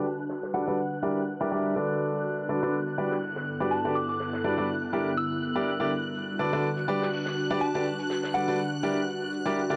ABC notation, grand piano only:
X:1
M:4/4
L:1/16
Q:"Swing 16ths" 1/4=123
K:Glyd
V:1 name="Grand piano"
z4 [G,DFABd] [G,DFABd] z2 [G,DEG_Bd] z2 [G,DEGBd] [G,DEGBd]2 [D,DFA=Bd]2- | [D,DFABd]4 [D,DFABd] [D,DFABd] z2 [G,DFGBd] z4 [G,DFGBd] z [D,DFGBd] | z4 [G,DFABd] [G,DFABd] z2 [G,DEG_Bd] z4 [G,DEGBd] z [D,DEGBd] | z4 [D,DFABd] [D,DFABd] z2 [G,DFGBd] z4 [G,DFGBd] z [D,DFGBd] |
z4 [G,DFABd] [G,DFABd] z2 [G,DEG_Bd] z4 [G,DEGBd] z [D,DEGBd] |]